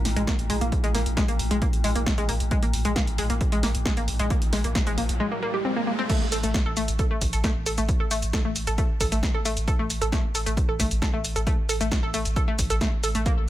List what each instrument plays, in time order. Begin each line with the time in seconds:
Already playing: synth drone A2
0.05 sub bass A#1, snare, open hi-hat
0.16 sub bass A#1, synth arpeggio sound G#3, closed hi-hat
0.27 synth arpeggio sound A#3, kick, snare, closed hi-hat
0.39 sub bass A#1, closed hi-hat
0.50 sub bass A#1, synth arpeggio sound G#3, open hi-hat
0.61 sub bass A#1, synth arpeggio sound A#3, closed hi-hat
0.72 kick, closed hi-hat
0.84 sub bass A#1, synth arpeggio sound G#3, closed hi-hat
0.94 sub bass A#1, synth arpeggio sound A#3, snare, open hi-hat
1.06 sub bass A#1, closed hi-hat
1.17 synth arpeggio sound G#3, kick, snare, closed hi-hat
1.28 sub bass A#1, synth arpeggio sound A#3, closed hi-hat
1.39 sub bass A#1, open hi-hat
1.51 sub bass A#1, synth arpeggio sound G#3, closed hi-hat
1.62 synth arpeggio sound A#3, kick, closed hi-hat
1.73 sub bass A#1, closed hi-hat
1.84 sub bass A#1, synth arpeggio sound G#3, open hi-hat
1.95 sub bass A#1, synth arpeggio sound A#3, closed hi-hat
2.06 kick, snare, closed hi-hat
2.18 sub bass A#1, synth arpeggio sound G#3, closed hi-hat
2.29 sub bass A#1, synth arpeggio sound A#3, open hi-hat
2.40 sub bass A#1, closed hi-hat
2.51 synth arpeggio sound G#3, kick, closed hi-hat, riser
2.63 sub bass A#1, synth arpeggio sound A#3, closed hi-hat
2.73 sub bass A#1, open hi-hat
2.85 sub bass A#1, synth arpeggio sound G#3, closed hi-hat
2.96 synth arpeggio sound A#3, kick, snare, closed hi-hat
3.07 sub bass A#1, closed hi-hat
3.18 sub bass A#1, synth arpeggio sound G#3, open hi-hat
3.30 sub bass A#1, synth arpeggio sound A#3, closed hi-hat
3.41 kick, closed hi-hat
3.52 sub bass A#1, synth arpeggio sound G#3, closed hi-hat
3.63 sub bass A#1, synth arpeggio sound A#3, snare, open hi-hat
3.75 sub bass A#1, closed hi-hat
3.85 synth arpeggio sound G#3, kick, snare, closed hi-hat
3.97 sub bass A#1, synth arpeggio sound A#3, closed hi-hat
4.08 sub bass A#1, open hi-hat
4.19 sub bass A#1, synth arpeggio sound G#3, closed hi-hat
4.30 synth arpeggio sound A#3, kick, closed hi-hat
4.42 sub bass A#1, closed hi-hat
4.53 sub bass A#1, synth arpeggio sound G#3, snare, open hi-hat
4.64 sub bass A#1, synth arpeggio sound A#3, closed hi-hat
4.75 kick, snare, closed hi-hat
4.87 sub bass A#1, synth arpeggio sound G#3, closed hi-hat
4.98 sub bass A#1, synth arpeggio sound A#3, open hi-hat
5.09 sub bass A#1, closed hi-hat
5.20 synth arpeggio sound G#3
5.32 synth arpeggio sound A#3
5.42 synth arpeggio sound A#3
5.54 synth arpeggio sound G4
5.65 synth arpeggio sound C4
5.76 synth arpeggio sound A#3
5.87 synth arpeggio sound A#3
5.99 synth arpeggio sound C4
6.10 synth arpeggio sound A3, kick, closed hi-hat, crash, shaker
6.21 sub bass A1
6.32 sub bass A1, synth arpeggio sound A4, open hi-hat, shaker
6.43 sub bass A1, synth arpeggio sound A3, closed hi-hat, shaker
6.54 kick, snare, closed hi-hat, shaker
6.66 sub bass A1, synth arpeggio sound A4
6.77 sub bass A1, synth arpeggio sound A3, open hi-hat, shaker
6.88 sub bass A1, closed hi-hat, shaker
6.99 synth arpeggio sound A4, kick, closed hi-hat, shaker
7.11 sub bass A1, synth arpeggio sound A3
7.21 sub bass A1, kick, open hi-hat, shaker
7.33 sub bass A1, synth arpeggio sound A4, closed hi-hat, shaker
7.44 synth arpeggio sound A3, kick, snare, closed hi-hat, shaker
7.55 sub bass A1
7.66 sub bass A1, synth arpeggio sound A4, open hi-hat, shaker
7.78 sub bass A1, synth arpeggio sound A3, closed hi-hat, shaker
7.89 kick, closed hi-hat, shaker
8.00 sub bass A1, synth arpeggio sound A4
8.11 sub bass A1, synth arpeggio sound A3, open hi-hat, shaker
8.22 sub bass A1, closed hi-hat, shaker
8.33 synth arpeggio sound A4, kick, snare, closed hi-hat, shaker
8.45 sub bass A1, synth arpeggio sound A3
8.56 sub bass A1, open hi-hat, shaker
8.67 sub bass A1, synth arpeggio sound A4, closed hi-hat, shaker
8.78 synth arpeggio sound A3, kick, closed hi-hat, shaker
8.90 sub bass A1
9.00 sub bass A1, synth arpeggio sound A4, kick, open hi-hat, shaker
9.12 sub bass A1, synth arpeggio sound A3, closed hi-hat, shaker
9.23 kick, snare, closed hi-hat, shaker
9.34 sub bass A1, synth arpeggio sound A4
9.45 sub bass A1, synth arpeggio sound A3, open hi-hat, shaker
9.57 sub bass A1, closed hi-hat, shaker
9.68 synth arpeggio sound A4, kick, closed hi-hat, shaker
9.79 sub bass A1, synth arpeggio sound A3
9.90 sub bass A1, open hi-hat, shaker
10.01 sub bass A1, synth arpeggio sound A4, closed hi-hat, shaker
10.12 synth arpeggio sound A3, kick, snare, closed hi-hat, shaker
10.24 sub bass A1
10.35 sub bass A1, synth arpeggio sound A4, open hi-hat, shaker
10.46 sub bass A1, synth arpeggio sound A3, closed hi-hat, shaker
10.57 kick, closed hi-hat, shaker
10.69 sub bass A1, synth arpeggio sound A4
10.80 sub bass A1, synth arpeggio sound A3, kick, open hi-hat, shaker
10.91 sub bass A1, closed hi-hat, shaker
11.02 synth arpeggio sound A4, kick, snare, closed hi-hat, shaker
11.13 sub bass A1, synth arpeggio sound A3
11.24 sub bass A1, open hi-hat, shaker
11.36 sub bass A1, synth arpeggio sound A4, closed hi-hat, shaker
11.47 synth arpeggio sound A3, kick, closed hi-hat, shaker
11.58 sub bass A1
11.69 sub bass A1, synth arpeggio sound A4, open hi-hat, shaker
11.81 sub bass A1, synth arpeggio sound A3, closed hi-hat, shaker
11.92 kick, snare, closed hi-hat, shaker
12.03 sub bass A1, synth arpeggio sound A4
12.14 sub bass A1, synth arpeggio sound A3, open hi-hat, shaker
12.25 sub bass A1, closed hi-hat, shaker
12.36 synth arpeggio sound A4, kick, closed hi-hat, shaker
12.48 sub bass A1, synth arpeggio sound A3
12.59 sub bass A1, kick, open hi-hat, shaker
12.70 sub bass A1, synth arpeggio sound A4, closed hi-hat, shaker
12.81 synth arpeggio sound A3, kick, snare, closed hi-hat, shaker
12.93 sub bass A1
13.03 sub bass A1, synth arpeggio sound A4, open hi-hat, shaker
13.15 sub bass A1, synth arpeggio sound A3, closed hi-hat, shaker
13.26 synth arpeggio sound A#3, kick, closed hi-hat, shaker
13.37 sub bass A#1